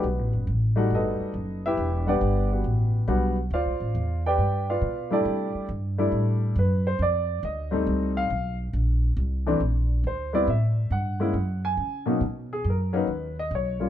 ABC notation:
X:1
M:4/4
L:1/8
Q:"Swing" 1/4=138
K:Bphr
V:1 name="Grand piano"
[B,FB]2 z2 [^DAB^d]3 [EGBe]- | [EGBe] [GBd]2 [B,FGB]3 z2 | [=Fcd=f]3 [GBdg]2 [FBdf]2 [GAd]- | [GAd]2 z4 B c |
d2 _e3 =f2 z | z6 c d | e2 f3 _a2 z | [K:B] z G A B2 d c2 |]
V:2 name="Grand piano"
z3 [G,A,^DF]3 z2 | z [G,B,Df]3 z2 [G,B,DF] z | z6 z [G,A,DE]- | [G,A,DE]2 z [G,A,DE]3 z2 |
z3 [G,A,C_E]3 z2 | z3 [E,A,CD] z3 [G,B,CE] | z3 [_A,_B,^CE] z3 [=B,,F,^A,C_E] | [K:B] z3 [F,A,CD] z3 [=G,A,C^E] |]
V:3 name="Upright bass" clef=bass
(3B,,, A,,, F,,, A,,,2 G,,, z F,,,2 | E,,,2 G,,,2 A,,,2 B,,,2 | (3D,, C,, A,,, E,,2 G,,2 B,,2 | C, z G,,2 A,,2 F,,2 |
=F,,2 D,,2 C,,2 B,,,2 | _B,,,2 C,,2 B,,,2 D,,2 | A,,2 G,,2 F,,2 ^C,2 | [K:B] B,,2 F,,2 D,,2 B,,,2 |]